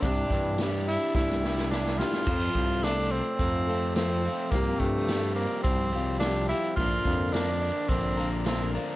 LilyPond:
<<
  \new Staff \with { instrumentName = "Steel-string acoustic guitar" } { \time 4/4 \key f \major \tempo 4 = 107 <c g d' e' g'>4 <g d' e' g'>4. <d' e' g'>8 <g d' e' g'>8 <d' e' g'>8 | <f c' f' a'>4 <f c' f' a'>4. <c' f' a'>8 <f c' f' a'>8 <c' f' a'>8 | <c f c' f' g'>4 <f c' f' g'>4. <c' f' g'>8 <f c' f' g'>8 <c' f' g'>8 | <bes, d f bes d' bes'>4 <f bes d' bes'>4. <f bes d' bes'>8 <f bes d' bes'>8 <f bes d' bes'>8 | }
  \new Staff \with { instrumentName = "Tenor saxophone" } { \time 4/4 \key f \major d'4 r8 e'8 e'4 d'8 f'8~ | f'4 d'8 c'4. c'4 | bes8 a4 bes8 c'4 d'8 e'8 | f'4 d'4 c'4 c'8 r8 | }
  \new Staff \with { instrumentName = "Overdriven electric guitar" } { \clef bass \time 4/4 \key f \major c8 e8 g8 d'8 e8 g8 e8 d'8 | f,8 c8 a8 c'8 f8 a8 f8 c'8 | c8 f8 g8 c'8 f8 g8 f8 c'8 | bes,8 d8 bes8 d'8 d8 bes8 d8 d'8 | }
  \new Staff \with { instrumentName = "FM bass" } { \clef bass \time 4/4 \key f \major c,8 g,4. c,2 | f,8 c,4. f,2 | c,8 g,4. c,2 | bes,,8 f,4. bes,,2 | }
  \new DrumStaff \with { instrumentName = "Drums" } \drummode { \time 4/4 <hh bd>8 bd8 <hh sn>4 <bd sn>16 sn16 sn16 sn16 sn16 sn16 sn16 sn16 | <cymc bd>8 bd8 <hh sn>4 <hh bd>4 <hh sn>4 | <hh bd>8 bd8 <hh sn>4 <hh bd>4 <hh sn>4 | <hh bd>8 bd8 <hh sn>4 <hh bd>4 <hh sn>4 | }
>>